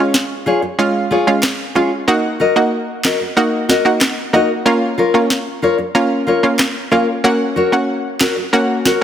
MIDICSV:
0, 0, Header, 1, 5, 480
1, 0, Start_track
1, 0, Key_signature, 6, "major"
1, 0, Tempo, 645161
1, 1547, Time_signature, 4, 2, 24, 8
1, 6720, End_track
2, 0, Start_track
2, 0, Title_t, "Nylon-string guitar"
2, 0, Program_c, 0, 24
2, 342, Note_on_c, 0, 65, 79
2, 348, Note_on_c, 0, 68, 84
2, 353, Note_on_c, 0, 73, 83
2, 450, Note_off_c, 0, 65, 0
2, 453, Note_off_c, 0, 68, 0
2, 456, Note_off_c, 0, 73, 0
2, 823, Note_on_c, 0, 65, 83
2, 829, Note_on_c, 0, 68, 87
2, 833, Note_on_c, 0, 73, 90
2, 931, Note_off_c, 0, 65, 0
2, 934, Note_off_c, 0, 68, 0
2, 936, Note_off_c, 0, 73, 0
2, 1303, Note_on_c, 0, 65, 82
2, 1308, Note_on_c, 0, 68, 83
2, 1313, Note_on_c, 0, 73, 95
2, 1411, Note_off_c, 0, 65, 0
2, 1414, Note_off_c, 0, 68, 0
2, 1416, Note_off_c, 0, 73, 0
2, 1784, Note_on_c, 0, 66, 77
2, 1789, Note_on_c, 0, 70, 80
2, 1794, Note_on_c, 0, 75, 89
2, 1891, Note_off_c, 0, 66, 0
2, 1894, Note_off_c, 0, 70, 0
2, 1896, Note_off_c, 0, 75, 0
2, 2263, Note_on_c, 0, 66, 73
2, 2269, Note_on_c, 0, 70, 85
2, 2273, Note_on_c, 0, 75, 84
2, 2371, Note_off_c, 0, 66, 0
2, 2374, Note_off_c, 0, 70, 0
2, 2376, Note_off_c, 0, 75, 0
2, 2743, Note_on_c, 0, 66, 83
2, 2749, Note_on_c, 0, 70, 76
2, 2754, Note_on_c, 0, 75, 83
2, 2851, Note_off_c, 0, 66, 0
2, 2854, Note_off_c, 0, 70, 0
2, 2856, Note_off_c, 0, 75, 0
2, 3223, Note_on_c, 0, 66, 79
2, 3229, Note_on_c, 0, 70, 90
2, 3234, Note_on_c, 0, 75, 98
2, 3331, Note_off_c, 0, 66, 0
2, 3334, Note_off_c, 0, 70, 0
2, 3336, Note_off_c, 0, 75, 0
2, 3702, Note_on_c, 0, 65, 78
2, 3708, Note_on_c, 0, 70, 82
2, 3713, Note_on_c, 0, 73, 86
2, 3811, Note_off_c, 0, 65, 0
2, 3814, Note_off_c, 0, 70, 0
2, 3816, Note_off_c, 0, 73, 0
2, 4183, Note_on_c, 0, 65, 74
2, 4188, Note_on_c, 0, 70, 79
2, 4193, Note_on_c, 0, 73, 86
2, 4291, Note_off_c, 0, 65, 0
2, 4294, Note_off_c, 0, 70, 0
2, 4294, Note_off_c, 0, 73, 0
2, 4663, Note_on_c, 0, 65, 67
2, 4668, Note_on_c, 0, 70, 72
2, 4673, Note_on_c, 0, 73, 78
2, 4771, Note_off_c, 0, 65, 0
2, 4774, Note_off_c, 0, 70, 0
2, 4776, Note_off_c, 0, 73, 0
2, 5142, Note_on_c, 0, 65, 73
2, 5148, Note_on_c, 0, 70, 86
2, 5153, Note_on_c, 0, 73, 85
2, 5251, Note_off_c, 0, 65, 0
2, 5253, Note_off_c, 0, 70, 0
2, 5256, Note_off_c, 0, 73, 0
2, 5624, Note_on_c, 0, 66, 74
2, 5629, Note_on_c, 0, 70, 75
2, 5634, Note_on_c, 0, 73, 88
2, 5731, Note_off_c, 0, 66, 0
2, 5734, Note_off_c, 0, 70, 0
2, 5736, Note_off_c, 0, 73, 0
2, 6103, Note_on_c, 0, 66, 84
2, 6109, Note_on_c, 0, 70, 84
2, 6114, Note_on_c, 0, 73, 88
2, 6211, Note_off_c, 0, 66, 0
2, 6214, Note_off_c, 0, 70, 0
2, 6216, Note_off_c, 0, 73, 0
2, 6585, Note_on_c, 0, 66, 70
2, 6591, Note_on_c, 0, 70, 69
2, 6596, Note_on_c, 0, 73, 78
2, 6692, Note_off_c, 0, 66, 0
2, 6695, Note_off_c, 0, 70, 0
2, 6697, Note_off_c, 0, 73, 0
2, 6720, End_track
3, 0, Start_track
3, 0, Title_t, "Synth pluck"
3, 0, Program_c, 1, 84
3, 0, Note_on_c, 1, 56, 78
3, 0, Note_on_c, 1, 61, 71
3, 0, Note_on_c, 1, 65, 85
3, 108, Note_off_c, 1, 56, 0
3, 109, Note_off_c, 1, 61, 0
3, 110, Note_off_c, 1, 65, 0
3, 585, Note_on_c, 1, 56, 91
3, 587, Note_on_c, 1, 61, 84
3, 590, Note_on_c, 1, 65, 103
3, 917, Note_off_c, 1, 56, 0
3, 918, Note_off_c, 1, 61, 0
3, 920, Note_off_c, 1, 65, 0
3, 945, Note_on_c, 1, 56, 77
3, 947, Note_on_c, 1, 61, 70
3, 950, Note_on_c, 1, 65, 87
3, 1068, Note_off_c, 1, 56, 0
3, 1069, Note_off_c, 1, 61, 0
3, 1070, Note_off_c, 1, 65, 0
3, 1305, Note_on_c, 1, 56, 75
3, 1308, Note_on_c, 1, 61, 71
3, 1310, Note_on_c, 1, 65, 87
3, 1428, Note_off_c, 1, 56, 0
3, 1429, Note_off_c, 1, 61, 0
3, 1430, Note_off_c, 1, 65, 0
3, 1545, Note_on_c, 1, 58, 91
3, 1546, Note_on_c, 1, 63, 89
3, 1549, Note_on_c, 1, 66, 104
3, 1668, Note_off_c, 1, 58, 0
3, 1669, Note_off_c, 1, 63, 0
3, 1670, Note_off_c, 1, 66, 0
3, 1904, Note_on_c, 1, 58, 80
3, 1907, Note_on_c, 1, 63, 70
3, 1909, Note_on_c, 1, 66, 83
3, 2028, Note_off_c, 1, 58, 0
3, 2029, Note_off_c, 1, 63, 0
3, 2030, Note_off_c, 1, 66, 0
3, 2504, Note_on_c, 1, 58, 95
3, 2506, Note_on_c, 1, 63, 86
3, 2509, Note_on_c, 1, 66, 103
3, 2837, Note_off_c, 1, 58, 0
3, 2838, Note_off_c, 1, 63, 0
3, 2839, Note_off_c, 1, 66, 0
3, 2865, Note_on_c, 1, 58, 77
3, 2867, Note_on_c, 1, 63, 70
3, 2869, Note_on_c, 1, 66, 87
3, 2988, Note_off_c, 1, 58, 0
3, 2989, Note_off_c, 1, 63, 0
3, 2990, Note_off_c, 1, 66, 0
3, 3224, Note_on_c, 1, 58, 77
3, 3227, Note_on_c, 1, 63, 74
3, 3228, Note_on_c, 1, 66, 85
3, 3347, Note_off_c, 1, 58, 0
3, 3349, Note_off_c, 1, 63, 0
3, 3350, Note_off_c, 1, 66, 0
3, 3464, Note_on_c, 1, 58, 94
3, 3467, Note_on_c, 1, 61, 89
3, 3469, Note_on_c, 1, 65, 102
3, 3587, Note_off_c, 1, 58, 0
3, 3589, Note_off_c, 1, 61, 0
3, 3590, Note_off_c, 1, 65, 0
3, 3824, Note_on_c, 1, 58, 77
3, 3827, Note_on_c, 1, 61, 69
3, 3829, Note_on_c, 1, 65, 82
3, 3948, Note_off_c, 1, 58, 0
3, 3949, Note_off_c, 1, 61, 0
3, 3950, Note_off_c, 1, 65, 0
3, 4424, Note_on_c, 1, 58, 94
3, 4427, Note_on_c, 1, 61, 84
3, 4429, Note_on_c, 1, 65, 102
3, 4757, Note_off_c, 1, 58, 0
3, 4758, Note_off_c, 1, 61, 0
3, 4759, Note_off_c, 1, 65, 0
3, 4785, Note_on_c, 1, 58, 79
3, 4788, Note_on_c, 1, 61, 70
3, 4790, Note_on_c, 1, 65, 84
3, 4908, Note_off_c, 1, 58, 0
3, 4910, Note_off_c, 1, 61, 0
3, 4911, Note_off_c, 1, 65, 0
3, 5146, Note_on_c, 1, 58, 78
3, 5148, Note_on_c, 1, 61, 73
3, 5150, Note_on_c, 1, 65, 87
3, 5269, Note_off_c, 1, 58, 0
3, 5270, Note_off_c, 1, 61, 0
3, 5271, Note_off_c, 1, 65, 0
3, 5386, Note_on_c, 1, 58, 98
3, 5388, Note_on_c, 1, 61, 86
3, 5391, Note_on_c, 1, 66, 106
3, 5509, Note_off_c, 1, 58, 0
3, 5510, Note_off_c, 1, 61, 0
3, 5511, Note_off_c, 1, 66, 0
3, 5745, Note_on_c, 1, 58, 74
3, 5748, Note_on_c, 1, 61, 71
3, 5751, Note_on_c, 1, 66, 87
3, 5868, Note_off_c, 1, 58, 0
3, 5870, Note_off_c, 1, 61, 0
3, 5871, Note_off_c, 1, 66, 0
3, 6345, Note_on_c, 1, 58, 93
3, 6347, Note_on_c, 1, 61, 86
3, 6349, Note_on_c, 1, 66, 101
3, 6677, Note_off_c, 1, 58, 0
3, 6678, Note_off_c, 1, 61, 0
3, 6679, Note_off_c, 1, 66, 0
3, 6720, End_track
4, 0, Start_track
4, 0, Title_t, "Muted nylon-string guitar strokes"
4, 464, Note_on_c, 9, 29, 45
4, 538, Note_off_c, 9, 29, 0
4, 2385, Note_on_c, 9, 29, 40
4, 2459, Note_off_c, 9, 29, 0
4, 4303, Note_on_c, 9, 29, 46
4, 4378, Note_off_c, 9, 29, 0
4, 6225, Note_on_c, 9, 29, 42
4, 6300, Note_off_c, 9, 29, 0
4, 6720, End_track
5, 0, Start_track
5, 0, Title_t, "Drums"
5, 106, Note_on_c, 9, 38, 59
5, 180, Note_off_c, 9, 38, 0
5, 1065, Note_on_c, 9, 37, 86
5, 1065, Note_on_c, 9, 38, 108
5, 1066, Note_on_c, 9, 39, 86
5, 1139, Note_off_c, 9, 37, 0
5, 1139, Note_off_c, 9, 38, 0
5, 1141, Note_off_c, 9, 39, 0
5, 2267, Note_on_c, 9, 38, 118
5, 2268, Note_on_c, 9, 39, 92
5, 2341, Note_off_c, 9, 38, 0
5, 2343, Note_off_c, 9, 39, 0
5, 2749, Note_on_c, 9, 38, 63
5, 2824, Note_off_c, 9, 38, 0
5, 2985, Note_on_c, 9, 37, 84
5, 2985, Note_on_c, 9, 38, 104
5, 2987, Note_on_c, 9, 39, 84
5, 3059, Note_off_c, 9, 37, 0
5, 3059, Note_off_c, 9, 38, 0
5, 3061, Note_off_c, 9, 39, 0
5, 3946, Note_on_c, 9, 38, 59
5, 4020, Note_off_c, 9, 38, 0
5, 4905, Note_on_c, 9, 37, 87
5, 4905, Note_on_c, 9, 38, 104
5, 4906, Note_on_c, 9, 39, 86
5, 4979, Note_off_c, 9, 37, 0
5, 4979, Note_off_c, 9, 38, 0
5, 4981, Note_off_c, 9, 39, 0
5, 6106, Note_on_c, 9, 38, 109
5, 6107, Note_on_c, 9, 39, 90
5, 6180, Note_off_c, 9, 38, 0
5, 6182, Note_off_c, 9, 39, 0
5, 6588, Note_on_c, 9, 38, 65
5, 6663, Note_off_c, 9, 38, 0
5, 6720, End_track
0, 0, End_of_file